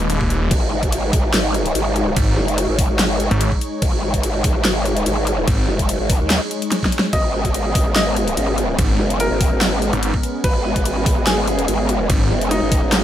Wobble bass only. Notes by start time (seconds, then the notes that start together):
0.51 G#1
1.34 G#1
1.75 G#1
2.37 F#1
2.69 G#1
2.90 G#1
3.82 G#1
4.65 G#1
5.06 G#1
5.68 F#1
6.00 G#1
6.21 D#2
7.13 G#1
7.96 G#1
8.37 G#1
8.99 F#1
9.31 G#1
9.52 G#1
10.44 G#1
11.27 G#1
11.68 G#1
12.30 F#1
12.62 G#1
12.83 G#1